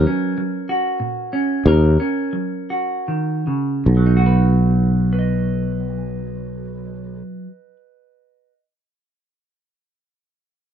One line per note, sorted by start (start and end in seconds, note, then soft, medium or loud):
0.00 0.32 D#3 medium
0.00 0.37 F#3 medium
0.00 1.65 A#4 soft
0.07 1.33 C#4 soft
0.38 0.94 F#3 soft
0.69 2.70 F#4 soft
1.00 1.59 A#2 medium
1.33 1.69 C#4 medium
1.66 1.96 D#2 medium
1.66 2.27 D#3 medium
1.66 3.83 A#4 medium
2.00 3.82 C#4 soft
2.33 2.99 F#3 soft
2.70 3.82 F#4 soft
3.08 3.47 D#3 soft
3.47 3.88 C#3 soft
3.86 7.21 B1 medium
3.86 7.37 B2 soft
3.97 7.47 F#3 soft
4.06 5.12 D#4 soft
4.17 5.18 F#4 soft
4.26 5.13 B4 soft
5.13 8.52 B4 soft
5.19 8.58 D#5 soft